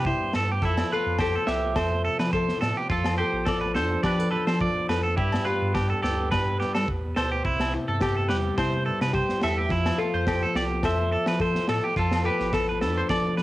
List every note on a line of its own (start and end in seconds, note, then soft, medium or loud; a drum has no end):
0.00 0.63 G2 medium
0.00 0.14 C3 medium
0.00 0.59 G3 medium
0.00 0.31 G4 medium
0.00 0.63 G4 medium
0.05 0.35 E4 medium
0.05 0.33 C5 medium
0.05 kick medium
0.33 0.63 G2 medium
0.33 0.49 A4 medium
0.33 snare medium
0.33 low agogo medium
0.52 0.63 G4 medium
0.62 0.84 F2 loud
0.62 2.90 F3 medium
0.62 0.91 E4 medium
0.62 0.89 A4 medium
0.62 kick medium
0.62 snare soft
0.78 snare medium
0.78 low agogo medium
0.92 1.19 F4 medium
0.92 1.21 A4 medium
0.92 1.19 B4 medium
1.06 1.38 F2 medium
1.18 1.34 G4 medium
1.18 1.76 A4 medium
1.18 1.46 C5 medium
1.18 kick medium
1.18 snare medium
1.18 low agogo medium
1.35 1.48 A4 medium
1.47 1.77 C2 medium
1.47 1.75 G4 medium
1.47 2.57 E5 medium
1.47 snare medium
1.75 2.09 F2 medium
1.75 2.34 A4 medium
1.75 2.04 C5 medium
1.75 kick medium
1.75 snare medium
1.75 low agogo medium
2.05 2.90 C3 medium
2.05 2.19 A4 medium
2.19 2.52 F3 medium
2.19 2.32 B4 medium
2.19 snare medium
2.19 low agogo medium
2.33 2.63 A4 medium
2.33 2.60 C5 medium
2.33 kick medium
2.49 snare soft
2.61 2.74 A2 medium
2.61 2.76 A4 medium
2.61 muted nylon-string guitar stroke medium
2.61 snare medium
2.61 low agogo medium
2.77 2.89 G4 medium
2.90 3.23 F2 medium
2.90 4.31 F3 medium
2.90 3.17 F4 medium
2.90 3.17 A4 medium
2.90 kick medium
2.90 snare soft
3.04 snare medium
3.04 low agogo medium
3.18 3.45 G4 medium
3.18 3.48 A4 medium
3.18 3.48 C5 medium
3.33 3.77 A1 medium
3.45 3.61 A4 medium
3.45 4.04 A4 medium
3.45 3.75 D5 medium
3.45 kick medium
3.45 snare medium
3.45 low agogo medium
3.61 3.74 B4 medium
3.75 3.97 F2 medium
3.75 5.14 D4 medium
3.75 4.02 A4 medium
3.75 4.05 C5 medium
3.75 snare medium
4.03 4.37 F3 medium
4.03 4.20 G4 medium
4.03 4.30 B4 medium
4.03 4.31 D5 medium
4.03 kick medium
4.03 snare medium
4.03 low agogo medium
4.20 4.89 A4 medium
4.31 5.18 F3 medium
4.31 4.84 A4 medium
4.31 4.46 B4 medium
4.47 4.69 F3 medium
4.47 4.60 C5 medium
4.47 snare medium
4.47 low agogo soft
4.61 5.15 F4 medium
4.61 4.88 D5 medium
4.61 kick medium
4.89 5.19 F2 medium
4.89 5.15 A4 medium
4.89 5.03 B4 medium
4.89 snare medium
4.89 low agogo medium
5.03 5.17 A4 medium
5.17 5.39 G2 loud
5.17 6.59 G2 medium
5.17 5.44 E4 medium
5.17 5.47 G4 medium
5.17 kick medium
5.32 snare medium
5.32 low agogo medium
5.45 5.73 F4 medium
5.45 5.75 G4 medium
5.45 6.02 B4 medium
5.62 5.93 G2 medium
5.74 5.89 G4 medium
5.74 6.32 G4 medium
5.74 kick medium
5.74 snare medium
5.74 low agogo medium
5.90 6.02 A4 medium
6.03 6.33 D2 medium
6.03 7.42 B3 medium
6.03 6.30 G4 medium
6.03 6.31 A4 medium
6.03 snare medium
6.31 6.65 G2 medium
6.31 7.42 G4 medium
6.31 6.58 B4 medium
6.31 7.17 B4 medium
6.31 kick medium
6.31 snare medium
6.31 low agogo medium
6.60 6.88 G2 medium
6.60 6.74 G4 medium
6.60 snare soft
6.74 6.86 G3 medium
6.74 6.87 A4 medium
6.74 snare medium
6.74 low agogo medium
6.88 7.14 E2 medium
6.88 kick medium
7.16 7.42 D2 medium
7.16 7.45 B2 medium
7.16 7.31 A4 medium
7.16 7.84 C5 medium
7.16 snare medium
7.16 low agogo medium
7.32 7.44 G4 medium
7.44 7.78 C2 loud
7.44 8.86 C3 medium
7.44 7.72 E4 medium
7.44 kick medium
7.60 snare medium
7.60 low agogo medium
7.74 8.58 E4 medium
7.74 muted clean electric guitar stroke medium
7.88 8.32 G2 medium
7.88 8.27 A4 medium
8.01 9.12 G4 medium
8.01 8.16 G4 medium
8.01 kick medium
8.01 snare medium
8.01 low agogo medium
8.17 8.29 A4 medium
8.29 8.52 E2 medium
8.29 9.68 G3 medium
8.29 8.56 G4 medium
8.29 8.36 B4 medium
8.29 snare medium
8.58 8.91 C3 loud
8.58 9.42 E4 medium
8.58 8.85 C5 medium
8.58 9.39 C5 medium
8.58 kick medium
8.58 snare medium
8.58 low agogo medium
8.85 9.70 G2 medium
8.85 9.00 A4 medium
9.01 9.23 C3 loud
9.01 9.14 B4 medium
9.01 snare medium
9.01 low agogo medium
9.13 9.70 G4 medium
9.13 9.41 C5 medium
9.13 kick medium
9.29 snare soft
9.42 9.72 E2 medium
9.42 9.68 E4 medium
9.42 9.57 A4 medium
9.42 10.11 E5 medium
9.42 snare medium
9.42 low agogo medium
9.58 9.70 G4 medium
9.69 9.92 F2 loud
9.69 11.96 F3 medium
9.69 9.98 E4 medium
9.69 kick medium
9.69 snare soft
9.86 snare medium
9.86 low agogo medium
9.98 10.26 F4 medium
9.98 10.27 A4 medium
10.14 10.46 F2 medium
10.14 10.56 C5 medium
10.27 10.42 G4 medium
10.27 10.84 A4 medium
10.27 kick medium
10.27 snare medium
10.27 low agogo medium
10.43 10.55 A4 medium
10.55 10.85 C2 medium
10.55 11.94 C4 medium
10.55 10.83 G4 medium
10.55 10.64 D5 medium
10.55 snare medium
10.83 11.17 F2 loud
10.83 11.40 A4 medium
10.83 11.11 C5 medium
10.83 11.65 E5 medium
10.83 kick medium
10.83 snare medium
10.83 low agogo medium
11.12 11.27 A4 medium
11.26 11.59 F3 medium
11.26 11.40 B4 medium
11.26 snare medium
11.26 low agogo medium
11.40 11.69 A4 medium
11.40 11.68 C5 medium
11.40 kick medium
11.55 snare soft
11.68 11.80 A2 medium
11.68 12.24 A4 medium
11.68 11.83 A4 medium
11.68 snare medium
11.68 low agogo medium
11.84 11.96 G4 medium
11.96 12.30 F2 loud
11.96 13.37 F3 medium
11.96 12.24 F4 medium
11.96 12.24 A4 medium
11.96 kick medium
11.96 snare soft
12.11 snare medium
12.11 low agogo medium
12.24 12.52 G4 medium
12.24 12.53 A4 medium
12.24 12.99 B4 loud
12.40 12.84 A1 medium
12.40 snare soft
12.53 12.68 A4 medium
12.53 13.10 A4 medium
12.53 kick medium
12.53 snare medium
12.53 low agogo medium
12.69 12.81 B4 medium
12.81 13.04 F2 medium
12.81 13.43 D4 medium
12.81 13.08 A4 medium
12.81 snare medium
12.98 13.10 C5 medium
13.09 13.42 F3 medium
13.09 13.43 A4 medium
13.09 13.37 D5 medium
13.09 13.43 D5 medium
13.09 kick medium
13.09 snare medium
13.09 low agogo medium
13.37 13.43 F3 medium
13.37 13.43 B4 medium
13.37 snare soft